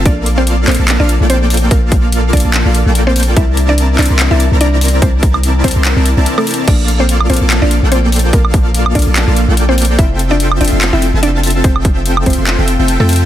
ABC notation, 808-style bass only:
X:1
M:4/4
L:1/16
Q:"Swing 16ths" 1/4=145
K:Bblyd
V:1 name="808-style bass" clef=bass
B,,,6 B,,, B,,,2 B,,,2 B,,,4- B,,, | B,,,6 B,,, B,,,2 B,,,2 B,,,4- B,,, | C,,6 C,, C,,2 C,,2 C,,4- C,, | C,,6 C,, C,,2 C,,2 C,, z4 |
B,,,6 B,,, B,,,2 B,,,2 B,,,4- B,,, | B,,,6 B,,, B,,,2 B,,,2 B,,,4- B,,, | F,,,6 F,,, F,,,2 F,,,2 F,,,4- F,,, | F,,,6 F,,, F,,,2 F,,,2 F,,,2 F,,3 |]